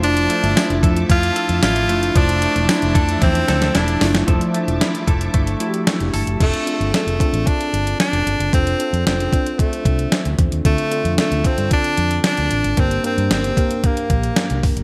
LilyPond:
<<
  \new Staff \with { instrumentName = "String machine" } { \time 4/4 \key f \major \tempo 4 = 113 <f e'' a'' d'''>1~ | <f e'' a'' d'''>1 | <f e'' a'' d'''>1 | r1 |
r1 | r1 | r1 | }
  \new Staff \with { instrumentName = "Clean electric guitar" } { \time 4/4 \key f \major f8 a8 e'8 a'8 e'8 a'8 e'8 a8 | f8 a8 e'8 a'8 e'8 a'8 e'8 a8 | <f a'>8 a8 e'8 a'8 a8 e'8 a8 a'8 | r1 |
r1 | r1 | r1 | }
  \new Staff \with { instrumentName = "Tine electric piano" } { \time 4/4 \key f \major <a d' e' f'>8 r16 <f a d' e'>4.~ <f a d' e'>16 r4 <a d' e' f'>8 | <f a d' e'>8. <f a d' e'>4.~ <f a d' e'>16 r4 <a d' e' f'>8 | <f a d' e'>4.~ <f a d' e'>16 r8. <a d' e' ges' g'>4~ <a d' e' ges' g'>16 r16 | <c' d' f' a'>8 <c' d' f' aes' a'>8. r16 <c' d' f' a'>4.~ <c' d' f' a'>16 r8. |
<c' d' f' a'>8 <c' d' f' a'>8. r16 <c' d' f' c''>4.~ <c' d' f' c''>16 r8. | <c' d' f' a'>8 <c' d' f' a'>8. r16 <c' d' f' a'>4.~ <c' d' f' a'>16 r8. | <bes d' g' bes'>8 <bes d' g' bes'>8. r16 <bes d' g' bes'>4.~ <bes d' g' bes'>16 r8. | }
  \new Staff \with { instrumentName = "Tine electric piano" } { \clef bass \time 4/4 \key f \major r1 | r1 | r1 | r1 |
r1 | d4. r2 r8 | g,4. r2 r8 | }
  \new Staff \with { instrumentName = "Tenor saxophone" } { \time 4/4 \key f \major d'4. r8 f'4 f'4 | d'4 d'4 c'4 d'8. r16 | r1 | a4 a4 d'4 d'4 |
c'4 c'4 a4. r8 | a4 a8 c'8 d'4 d'4 | c'8 c'8 c'4 bes4. r8 | }
  \new Staff \with { instrumentName = "Fingered electric bass" } { \clef bass \time 4/4 \key f \major f,,8. g,,16 r16 f,,16 f,8 f,8 r16 f,16 a,,8 ges,,8 | f,,8. e,,16 r16 f,,16 f,8 e,8 d,8 e,,8 ges,,8 | f,,16 r8 e,,16 r8 f,,8 g,,8 r8. f,,16 g,,16 ges,,16 | f,,16 r8 g,,16 r16 f,,16 r16 a,,16 r8 g,,8 r16 f,,16 g,,16 ges,,16 |
f,,8 r16 f,16 f,,8 r4 c,8 r16 d,16 e,16 ees,16 | d,16 r8 f,16 r16 d,16 r16 g,16 r8 f,8 r16 d,16 a,,16 aes,,16 | g,,8 r16 g,16 g,,8 r4 bes,,8 r16 c,16 g,,16 ges,,16 | }
  \new DrumStaff \with { instrumentName = "Drums" } \drummode { \time 4/4 hh16 hh16 hh16 hh16 <hh sn tamb>16 hh16 <hh bd>16 hh16 <hh bd>16 hh16 hh16 hh16 <hh sn tamb>16 hh16 hh16 hh16 | <hh bd>16 hh16 hh16 hh16 <hh sn tamb>16 hh16 <hh bd>16 hh16 <hh bd sn>16 hh16 <hh sn>16 <hh sn>16 <hh sn>16 hh16 <hho sn>16 <hh sn>16 | <hh bd>16 hh16 hh16 hh16 <hh sn>16 hh16 <hh bd>16 hh16 <hh bd>16 hh16 hh16 hh16 <hh sn>16 hh16 hho16 hh16 | <cymc hh bd>16 hh16 hh16 hh16 <hh sn>16 hh16 <hh bd>16 hh16 <hh bd>16 hh16 hh16 hh16 <hh sn>16 hh16 hh16 hh16 |
<hh bd>16 hh16 hh16 hh16 <hh sn>16 hh16 <hh bd>16 hh16 <hh bd>16 hh16 <hh bd>16 hh16 <hh sn>16 hh16 <hh bd>16 hh16 | <hh bd>16 hh16 hh16 hh16 <hh sn>16 hh16 <hh bd>16 hh16 <hh bd>16 hh16 hh16 hh16 <hh sn>16 hh16 hh16 hh16 | <hh bd>16 hh16 hh16 hh16 <hh sn>16 hh16 <hh bd>16 hh16 <hh bd>16 hh16 <hh bd>16 hh16 <hh sn>16 hh16 <hho bd>16 hh16 | }
>>